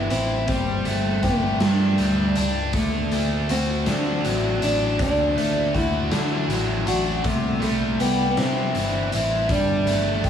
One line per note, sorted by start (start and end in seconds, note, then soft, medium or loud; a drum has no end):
0.00 0.11 C3 medium
0.00 0.48 E3 medium
0.00 0.47 G3 medium
0.00 0.15 B3 medium
0.00 0.48 G4 medium
0.10 0.46 A1 medium
0.10 0.46 C4 medium
0.10 0.48 E4 medium
0.10 closed hi-hat medium
0.48 0.83 G1 medium
0.48 1.97 G3 medium
0.48 1.26 C4 medium
0.48 kick loud
0.48 closed hi-hat medium
0.85 1.21 G1 medium
0.85 3.12 A3 medium
0.85 closed hi-hat soft
1.23 1.58 G1 medium
1.23 1.63 A3 medium
1.23 2.74 G4 medium
1.23 kick medium
1.23 closed hi-hat soft
1.60 1.96 G2 medium
1.60 2.42 G3 medium
1.60 2.36 D4 medium
1.60 snare medium
1.60 closed hi-hat medium
1.98 2.34 D2 medium
1.98 2.74 G3 medium
1.98 closed hi-hat medium
2.35 2.71 C#2 medium
2.35 3.86 D4 medium
2.35 closed hi-hat medium
2.73 3.08 D2 medium
2.73 4.62 D3 medium
2.73 3.46 A3 medium
2.73 kick loud
2.73 closed hi-hat medium
3.11 3.46 D2 medium
3.11 5.00 A3 medium
3.11 closed hi-hat medium
3.49 3.84 D2 medium
3.49 4.66 C4 medium
3.49 5.37 F#4 medium
3.49 closed hi-hat medium
3.86 4.22 D3 medium
3.86 4.59 D4 medium
3.86 snare medium
3.86 closed hi-hat medium
4.24 4.59 A1 medium
4.24 6.12 F#3 medium
4.24 closed hi-hat medium
4.60 4.96 A1 medium
4.60 6.10 D4 medium
4.60 5.00 D4 medium
4.60 closed hi-hat medium
4.97 5.34 D2 medium
4.97 6.86 D3 medium
4.97 kick loud
4.97 closed hi-hat medium
5.02 5.72 D4 medium
5.36 5.72 D2 medium
5.36 7.24 A3 medium
5.36 closed hi-hat medium
5.74 6.09 D2 medium
5.74 6.91 E4 medium
5.74 7.24 F#4 medium
5.74 kick medium
5.74 closed hi-hat medium
6.11 6.47 D3 medium
6.11 6.85 D4 medium
6.11 snare loud
6.11 closed hi-hat medium
6.48 6.84 A1 medium
6.48 7.24 F#3 medium
6.48 closed hi-hat medium
6.86 7.21 A1 medium
6.86 7.24 D4 medium
6.86 7.26 F#4 loud
6.86 closed hi-hat medium
7.23 7.59 C2 medium
7.23 9.11 C3 medium
7.23 7.63 A3 medium
7.23 kick loud
7.23 closed hi-hat medium
7.61 7.96 C2 medium
7.61 9.50 G3 medium
7.61 8.02 A3 medium
7.61 closed hi-hat soft
7.99 8.34 C2 medium
7.99 8.29 B3 medium
7.99 9.90 G4 medium
7.99 closed hi-hat medium
8.30 8.37 B3 medium
8.37 8.72 C3 medium
8.37 9.46 C4 medium
8.37 9.11 E4 medium
8.37 snare medium
8.37 closed hi-hat medium
8.75 9.09 G1 medium
8.75 9.49 E3 medium
8.75 closed hi-hat medium
9.12 9.51 A1 medium
9.12 9.50 E4 medium
9.12 closed hi-hat medium
9.49 9.84 G1 loud
9.49 10.30 G3 medium
9.49 10.30 D4 medium
9.49 kick loud
9.49 closed hi-hat medium
9.86 10.21 G1 medium
9.86 10.30 A3 medium
9.86 closed hi-hat medium
10.24 10.30 G1 medium
10.24 10.30 G4 medium
10.24 kick medium
10.24 closed hi-hat medium